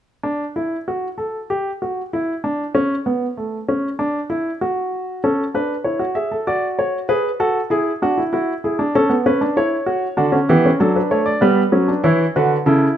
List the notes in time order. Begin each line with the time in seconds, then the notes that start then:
0.23 D4
0.56 E4
0.88 F#4
1.18 A4
1.50 G4
1.82 F#4
2.13 E4
2.44 D4
2.75 C#4
3.06 B3
3.37 A3
3.68 C#4
3.99 D4
4.30 E4
4.61 F#4
5.24 C#4 A4
5.54 D4 B4
5.84 E4 C#5
5.99 F#4
6.15 G#4 E5
6.31 A4
6.47 F#4 D5
6.79 C#5
7.09 G#4 B4
7.40 F#4 A4
7.70 E4 G#4
8.02 D4 F#4
8.18 E4
8.33 E4 F#4
8.64 E4 G#4
8.79 D4
8.95 C#4 A4
9.10 B3
9.26 C#4 B4
9.41 D4
9.57 E4 C#5
9.86 F#4
10.17 D3 D4 F#4
10.32 C#4
10.49 E3 B3 G4
10.65 C#4
10.80 F#3 D4 A4
10.96 B4
11.11 A3 C#5
11.26 D5
11.41 G3 B3 B4
11.72 F#3 C#4
11.88 D4
12.04 E3 E4 C#5
12.36 D3 F#4 B4
12.66 C#3 E4 A4